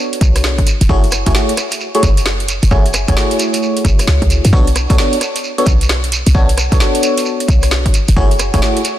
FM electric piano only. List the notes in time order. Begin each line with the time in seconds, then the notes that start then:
Already playing: B3 D4 F#4 A4 C#5
0.89 A3 E4 F#4 G#4 C#5
1.27 A3 E4 F#4 G#4 C#5
1.35 A3 E4 F#4 G#4 C#5
1.95 A3 E4 F#4 G#4 C#5
2.71 A3 E4 F#4 G#4 C#5
3.08 A3 E4 F#4 G#4 C#5
3.17 A3 E4 F#4 G#4 C#5
4.53 B3 D4 F#4 A4 C#5
4.90 B3 D4 F#4 A4 C#5
4.98 B3 D4 F#4 A4 C#5
5.58 B3 D4 F#4 A4 C#5
6.35 B3 D4 F#4 A4 C#5
6.72 B3 D4 F#4 A4 C#5
6.80 B3 D4 F#4 A4 C#5
8.16 A3 E4 F#4 G#4 C#5
8.54 A3 E4 F#4 G#4 C#5
8.62 A3 E4 F#4 G#4 C#5